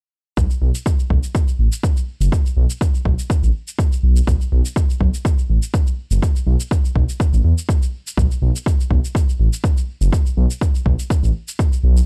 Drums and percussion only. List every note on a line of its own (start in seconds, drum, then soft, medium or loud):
0.37 kick loud
0.37 shaker medium
0.50 shaker soft
0.75 shaker medium
0.86 kick loud
0.86 shaker medium
0.99 shaker soft
1.10 kick medium
1.23 shaker medium
1.35 kick loud
1.35 shaker medium
1.48 shaker soft
1.72 shaker medium
1.83 kick loud
1.83 shaker medium
1.97 shaker soft
2.21 shaker medium
2.32 kick loud
2.32 shaker medium
2.46 shaker soft
2.70 shaker medium
2.81 kick loud
2.81 shaker medium
2.95 shaker soft
3.05 kick medium
3.19 shaker medium
3.30 kick loud
3.30 shaker medium
3.43 shaker soft
3.68 shaker medium
3.79 kick loud
3.79 shaker medium
3.92 shaker soft
4.16 shaker medium
4.27 kick loud
4.27 shaker medium
4.41 shaker soft
4.65 shaker medium
4.76 kick loud
4.76 shaker medium
4.90 shaker soft
5.01 kick medium
5.14 shaker medium
5.25 kick loud
5.25 shaker medium
5.39 shaker soft
5.63 shaker medium
5.74 kick loud
5.74 shaker medium
5.87 shaker soft
6.11 shaker medium
6.22 kick loud
6.22 shaker medium
6.36 shaker soft
6.60 shaker medium
6.71 kick loud
6.71 shaker medium
6.85 shaker soft
6.96 kick medium
7.09 shaker medium
7.20 kick loud
7.20 shaker medium
7.34 shaker soft
7.58 shaker medium
7.69 kick loud
7.69 shaker medium
7.83 shaker soft
8.07 shaker medium
8.17 kick loud
8.17 shaker medium
8.31 shaker soft
8.56 shaker medium
8.66 kick loud
8.66 shaker medium
8.81 shaker soft
8.91 kick medium
9.05 shaker medium
9.15 kick loud
9.15 shaker medium
9.29 shaker soft
9.53 shaker medium
9.64 kick loud
9.64 shaker medium
9.77 shaker soft
10.02 shaker medium
10.13 kick loud
10.13 shaker medium
10.26 shaker soft
10.51 shaker medium
10.61 kick loud
10.61 shaker medium
10.75 shaker soft
10.86 kick medium
10.99 shaker medium
11.10 kick loud
11.10 shaker medium
11.24 shaker soft
11.48 shaker medium
11.59 kick loud
11.59 shaker medium
11.73 shaker soft
11.97 shaker medium